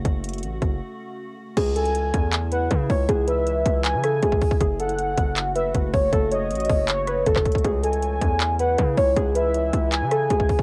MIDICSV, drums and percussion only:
0, 0, Header, 1, 2, 480
1, 0, Start_track
1, 0, Key_signature, 4, "minor"
1, 0, Tempo, 379747
1, 63, Time_signature, 4, 2, 24, 8
1, 13430, End_track
2, 0, Start_track
2, 0, Title_t, "Drums"
2, 63, Note_on_c, 9, 36, 110
2, 63, Note_on_c, 9, 42, 76
2, 189, Note_off_c, 9, 36, 0
2, 189, Note_off_c, 9, 42, 0
2, 303, Note_on_c, 9, 42, 81
2, 363, Note_off_c, 9, 42, 0
2, 363, Note_on_c, 9, 42, 69
2, 423, Note_off_c, 9, 42, 0
2, 423, Note_on_c, 9, 42, 57
2, 483, Note_off_c, 9, 42, 0
2, 483, Note_on_c, 9, 42, 47
2, 542, Note_off_c, 9, 42, 0
2, 542, Note_on_c, 9, 42, 75
2, 668, Note_off_c, 9, 42, 0
2, 781, Note_on_c, 9, 42, 80
2, 782, Note_on_c, 9, 36, 102
2, 907, Note_off_c, 9, 42, 0
2, 908, Note_off_c, 9, 36, 0
2, 1983, Note_on_c, 9, 36, 114
2, 1983, Note_on_c, 9, 42, 77
2, 1983, Note_on_c, 9, 49, 105
2, 2109, Note_off_c, 9, 36, 0
2, 2109, Note_off_c, 9, 42, 0
2, 2109, Note_off_c, 9, 49, 0
2, 2223, Note_on_c, 9, 42, 82
2, 2343, Note_off_c, 9, 42, 0
2, 2343, Note_on_c, 9, 42, 48
2, 2462, Note_off_c, 9, 42, 0
2, 2462, Note_on_c, 9, 42, 71
2, 2589, Note_off_c, 9, 42, 0
2, 2702, Note_on_c, 9, 42, 92
2, 2703, Note_on_c, 9, 36, 105
2, 2829, Note_off_c, 9, 36, 0
2, 2829, Note_off_c, 9, 42, 0
2, 2942, Note_on_c, 9, 39, 127
2, 2942, Note_on_c, 9, 42, 92
2, 3068, Note_off_c, 9, 42, 0
2, 3069, Note_off_c, 9, 39, 0
2, 3181, Note_on_c, 9, 42, 69
2, 3308, Note_off_c, 9, 42, 0
2, 3421, Note_on_c, 9, 42, 74
2, 3423, Note_on_c, 9, 36, 101
2, 3547, Note_off_c, 9, 42, 0
2, 3549, Note_off_c, 9, 36, 0
2, 3661, Note_on_c, 9, 46, 50
2, 3663, Note_on_c, 9, 36, 100
2, 3787, Note_off_c, 9, 46, 0
2, 3790, Note_off_c, 9, 36, 0
2, 3903, Note_on_c, 9, 36, 113
2, 3903, Note_on_c, 9, 42, 79
2, 4029, Note_off_c, 9, 42, 0
2, 4030, Note_off_c, 9, 36, 0
2, 4142, Note_on_c, 9, 42, 83
2, 4268, Note_off_c, 9, 42, 0
2, 4383, Note_on_c, 9, 42, 70
2, 4509, Note_off_c, 9, 42, 0
2, 4622, Note_on_c, 9, 36, 104
2, 4622, Note_on_c, 9, 42, 94
2, 4748, Note_off_c, 9, 42, 0
2, 4749, Note_off_c, 9, 36, 0
2, 4861, Note_on_c, 9, 42, 91
2, 4862, Note_on_c, 9, 39, 127
2, 4988, Note_off_c, 9, 39, 0
2, 4988, Note_off_c, 9, 42, 0
2, 5101, Note_on_c, 9, 42, 80
2, 5102, Note_on_c, 9, 37, 76
2, 5228, Note_off_c, 9, 42, 0
2, 5229, Note_off_c, 9, 37, 0
2, 5341, Note_on_c, 9, 42, 78
2, 5343, Note_on_c, 9, 36, 102
2, 5463, Note_off_c, 9, 36, 0
2, 5463, Note_on_c, 9, 36, 97
2, 5468, Note_off_c, 9, 42, 0
2, 5581, Note_on_c, 9, 46, 51
2, 5583, Note_off_c, 9, 36, 0
2, 5583, Note_on_c, 9, 36, 104
2, 5704, Note_off_c, 9, 36, 0
2, 5704, Note_on_c, 9, 36, 108
2, 5707, Note_off_c, 9, 46, 0
2, 5823, Note_off_c, 9, 36, 0
2, 5823, Note_on_c, 9, 36, 117
2, 5823, Note_on_c, 9, 42, 81
2, 5950, Note_off_c, 9, 36, 0
2, 5950, Note_off_c, 9, 42, 0
2, 6064, Note_on_c, 9, 42, 83
2, 6184, Note_off_c, 9, 42, 0
2, 6184, Note_on_c, 9, 42, 49
2, 6303, Note_off_c, 9, 42, 0
2, 6303, Note_on_c, 9, 42, 74
2, 6429, Note_off_c, 9, 42, 0
2, 6542, Note_on_c, 9, 42, 94
2, 6543, Note_on_c, 9, 36, 106
2, 6668, Note_off_c, 9, 42, 0
2, 6669, Note_off_c, 9, 36, 0
2, 6782, Note_on_c, 9, 42, 92
2, 6783, Note_on_c, 9, 39, 127
2, 6909, Note_off_c, 9, 39, 0
2, 6909, Note_off_c, 9, 42, 0
2, 7023, Note_on_c, 9, 42, 74
2, 7149, Note_off_c, 9, 42, 0
2, 7262, Note_on_c, 9, 42, 72
2, 7264, Note_on_c, 9, 36, 99
2, 7388, Note_off_c, 9, 42, 0
2, 7390, Note_off_c, 9, 36, 0
2, 7502, Note_on_c, 9, 46, 50
2, 7504, Note_on_c, 9, 36, 100
2, 7628, Note_off_c, 9, 46, 0
2, 7630, Note_off_c, 9, 36, 0
2, 7744, Note_on_c, 9, 36, 116
2, 7744, Note_on_c, 9, 42, 80
2, 7870, Note_off_c, 9, 36, 0
2, 7871, Note_off_c, 9, 42, 0
2, 7982, Note_on_c, 9, 42, 78
2, 8108, Note_off_c, 9, 42, 0
2, 8223, Note_on_c, 9, 42, 64
2, 8283, Note_off_c, 9, 42, 0
2, 8283, Note_on_c, 9, 42, 61
2, 8343, Note_off_c, 9, 42, 0
2, 8343, Note_on_c, 9, 42, 62
2, 8403, Note_off_c, 9, 42, 0
2, 8403, Note_on_c, 9, 42, 62
2, 8462, Note_on_c, 9, 46, 66
2, 8463, Note_on_c, 9, 36, 107
2, 8529, Note_off_c, 9, 42, 0
2, 8588, Note_off_c, 9, 46, 0
2, 8589, Note_off_c, 9, 36, 0
2, 8701, Note_on_c, 9, 42, 90
2, 8702, Note_on_c, 9, 39, 127
2, 8828, Note_off_c, 9, 39, 0
2, 8828, Note_off_c, 9, 42, 0
2, 8941, Note_on_c, 9, 42, 74
2, 8942, Note_on_c, 9, 37, 75
2, 9068, Note_off_c, 9, 42, 0
2, 9069, Note_off_c, 9, 37, 0
2, 9181, Note_on_c, 9, 42, 73
2, 9183, Note_on_c, 9, 36, 100
2, 9303, Note_off_c, 9, 36, 0
2, 9303, Note_on_c, 9, 36, 95
2, 9303, Note_on_c, 9, 37, 110
2, 9303, Note_on_c, 9, 39, 76
2, 9307, Note_off_c, 9, 42, 0
2, 9421, Note_on_c, 9, 46, 50
2, 9423, Note_on_c, 9, 42, 56
2, 9424, Note_off_c, 9, 36, 0
2, 9424, Note_on_c, 9, 36, 101
2, 9429, Note_off_c, 9, 37, 0
2, 9429, Note_off_c, 9, 39, 0
2, 9504, Note_off_c, 9, 42, 0
2, 9504, Note_on_c, 9, 42, 55
2, 9544, Note_off_c, 9, 36, 0
2, 9544, Note_on_c, 9, 36, 108
2, 9548, Note_off_c, 9, 46, 0
2, 9584, Note_off_c, 9, 42, 0
2, 9584, Note_on_c, 9, 42, 56
2, 9663, Note_off_c, 9, 42, 0
2, 9663, Note_on_c, 9, 42, 78
2, 9664, Note_off_c, 9, 36, 0
2, 9664, Note_on_c, 9, 36, 115
2, 9790, Note_off_c, 9, 36, 0
2, 9790, Note_off_c, 9, 42, 0
2, 9904, Note_on_c, 9, 42, 84
2, 10023, Note_off_c, 9, 42, 0
2, 10023, Note_on_c, 9, 42, 47
2, 10143, Note_off_c, 9, 42, 0
2, 10143, Note_on_c, 9, 42, 73
2, 10269, Note_off_c, 9, 42, 0
2, 10383, Note_on_c, 9, 36, 107
2, 10383, Note_on_c, 9, 42, 91
2, 10510, Note_off_c, 9, 36, 0
2, 10510, Note_off_c, 9, 42, 0
2, 10623, Note_on_c, 9, 39, 127
2, 10623, Note_on_c, 9, 42, 91
2, 10749, Note_off_c, 9, 42, 0
2, 10750, Note_off_c, 9, 39, 0
2, 10862, Note_on_c, 9, 42, 69
2, 10988, Note_off_c, 9, 42, 0
2, 11101, Note_on_c, 9, 42, 75
2, 11104, Note_on_c, 9, 36, 103
2, 11227, Note_off_c, 9, 42, 0
2, 11230, Note_off_c, 9, 36, 0
2, 11341, Note_on_c, 9, 46, 52
2, 11344, Note_on_c, 9, 36, 101
2, 11468, Note_off_c, 9, 46, 0
2, 11470, Note_off_c, 9, 36, 0
2, 11584, Note_on_c, 9, 36, 114
2, 11584, Note_on_c, 9, 42, 83
2, 11710, Note_off_c, 9, 36, 0
2, 11710, Note_off_c, 9, 42, 0
2, 11821, Note_on_c, 9, 42, 81
2, 11948, Note_off_c, 9, 42, 0
2, 12063, Note_on_c, 9, 42, 72
2, 12190, Note_off_c, 9, 42, 0
2, 12302, Note_on_c, 9, 42, 94
2, 12303, Note_on_c, 9, 36, 101
2, 12429, Note_off_c, 9, 36, 0
2, 12429, Note_off_c, 9, 42, 0
2, 12543, Note_on_c, 9, 42, 94
2, 12544, Note_on_c, 9, 39, 126
2, 12669, Note_off_c, 9, 42, 0
2, 12670, Note_off_c, 9, 39, 0
2, 12782, Note_on_c, 9, 42, 81
2, 12783, Note_on_c, 9, 37, 77
2, 12909, Note_off_c, 9, 42, 0
2, 12910, Note_off_c, 9, 37, 0
2, 13021, Note_on_c, 9, 42, 74
2, 13023, Note_on_c, 9, 36, 104
2, 13143, Note_off_c, 9, 36, 0
2, 13143, Note_on_c, 9, 36, 98
2, 13147, Note_off_c, 9, 42, 0
2, 13260, Note_on_c, 9, 46, 50
2, 13263, Note_off_c, 9, 36, 0
2, 13263, Note_on_c, 9, 36, 106
2, 13383, Note_off_c, 9, 36, 0
2, 13383, Note_on_c, 9, 36, 107
2, 13387, Note_off_c, 9, 46, 0
2, 13430, Note_off_c, 9, 36, 0
2, 13430, End_track
0, 0, End_of_file